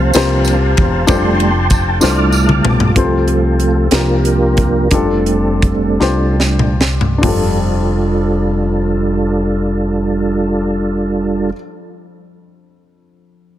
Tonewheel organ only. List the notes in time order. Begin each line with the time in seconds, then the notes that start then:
Already playing: F3 A3 C4 C5 F5 A5
0.15 F3 A#3 D4
1.08 G3 A3 D4 G5 A5 C6
2.02 G3 A3 D4 E4 A5 D6 F6
2.65 F4
2.96 F3 A3 C4 F4 A4
3.92 F3 A#3 D4 F4 G4 A#4
4.92 G3 A3 C4 D4 A4
6.39 G3 A3 D4
7.23 G3 D4 F4 A4